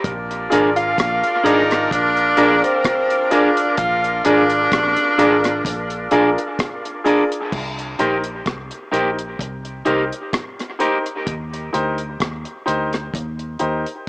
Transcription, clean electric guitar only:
0.52 0.68 D4 medium
0.52 0.69 G#4 medium
0.52 0.69 A#4 medium
1.44 1.61 D4 medium
1.44 1.61 G#4 medium
1.44 1.62 A#4 loud
2.37 2.55 D4 medium
2.37 2.55 G#4 medium
2.37 2.55 A#4 loud
3.32 3.49 D4 medium
3.32 3.49 G#4 medium
3.32 3.49 A#4 medium
4.26 4.42 D4 medium
4.26 4.42 G#4 medium
4.26 4.43 A#4 medium
5.18 5.35 D4 medium
5.18 5.36 G#4 medium
5.18 5.36 A#4 medium
6.11 6.29 D4 medium
6.11 6.29 G#4 medium
6.11 6.29 A#4 medium
6.38 muted clean electric guitar stroke soft
7.05 7.23 D4 medium
7.05 7.23 G#4 medium
7.05 7.23 A#4 medium
7.99 8.16 D#4 medium
7.99 8.16 G4 medium
7.99 8.17 A#4 medium
8.92 9.09 D#4 medium
8.92 9.10 G4 medium
8.92 9.10 A#4 medium
9.85 10.03 D#4 medium
9.85 10.03 G4 medium
9.85 10.04 A#4 medium
10.80 10.97 D#4 medium
10.80 10.97 G4 medium
10.80 10.98 A#4 medium

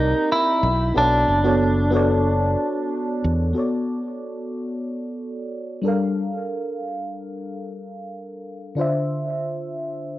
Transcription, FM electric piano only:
0.00 0.65 A#3 medium
0.00 0.65 C4 medium
0.00 0.65 G4 medium
0.00 0.65 A#4 medium
0.00 0.66 D5 medium
0.00 0.65 D#5 loud
0.94 1.41 B3 medium
0.94 1.41 F#4 medium
0.94 1.41 A4 medium
0.94 1.42 C#5 medium
0.94 1.42 D5 medium
1.44 1.89 B3 medium
1.44 1.89 F#4 medium
1.44 1.90 A4 medium
1.44 1.90 C#5 medium
1.44 1.91 D5 medium
1.91 3.51 B3 loud
1.91 3.52 F#4 medium
1.91 3.53 A4 medium
1.95 3.54 C#5 medium
1.95 3.54 D5 loud
3.53 5.79 B3 medium
3.53 5.80 F#4 medium
3.53 5.81 A4 medium
3.58 5.82 C#5 medium
3.58 5.82 D5 medium
5.82 8.73 G3 medium
5.82 8.74 D4 medium
5.82 8.75 A4 medium
5.86 8.75 A#4 medium
5.86 8.76 F5 medium
8.75 10.19 D3 medium
8.75 10.19 D4 medium
8.75 10.19 F4 medium
8.79 10.19 C5 medium
8.79 10.19 E5 medium

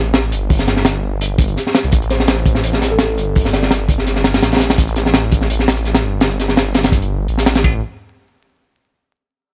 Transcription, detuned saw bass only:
0.00 0.34 A1 medium
0.32 1.56 G1 loud
1.84 1.92 C2 medium
1.93 2.63 A1 loud
2.64 3.19 A1 loud
3.18 4.41 G1 loud
4.43 4.77 A1 loud
4.78 5.48 A1 loud
5.50 6.05 A1 loud
6.03 7.27 G1 loud
7.29 7.63 A1 loud
7.64 7.81 A1 loud

